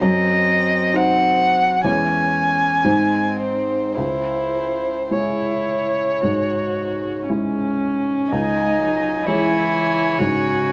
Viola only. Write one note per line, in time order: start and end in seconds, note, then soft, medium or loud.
0.03 1.84 C4 medium
1.84 2.86 C#4 soft
2.84 3.97 C4 soft
3.95 4.99 E4 soft
5.10 6.23 E4 soft
6.22 7.28 F#4 soft
7.29 8.33 C#4 soft
8.32 9.26 D#4 medium
9.27 10.20 E4 medium
10.18 10.72 F#4 medium